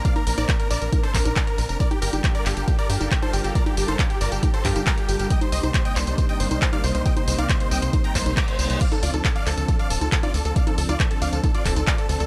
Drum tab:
CC |----------------|----------------|----------------|----------------|
HH |xxoxxxoxxxoxxxox|xxoxxxoxxxoxxxox|xxoxxxoxxxoxxxox|xxoxxxoxxxoxxxox|
TB |x-xxx-xxx-xxx-xx|x-xxx-xxx-xxx-xx|x-xxx-xxx-xxx-xx|x-xxx-xxx-xxx-xx|
CP |----x-----x-x---|----x-x-----x---|----x-----x-x---|----x-x-----x---|
CG |-o-o----o--o----|-o-o-------o-o--|-o-o----o--o----|-o-o-------o-o--|
BD |o---o---o-o-o---|o---o---o---o---|o---o---o-o-o---|o---o---o---o---|

CC |----------------|x---------------|----------------|
HH |xxoxxxoxxxoxxxox|xxoxxxoxxxoxxxox|xxoxxxoxxxoxxxox|
TB |x-xxx-xxx-xxx-xx|x-xxx-xxx-xxx-xx|x-xxx-xxx-xxx-xx|
CP |----x-----x-x---|----x-x-----x---|----x-----x-x---|
CG |-o-o----o--o----|-o-o-------o-o--|-o-o----o--o----|
BD |o---o---o-o-o---|o---o---o---o---|o---o---o-o-o---|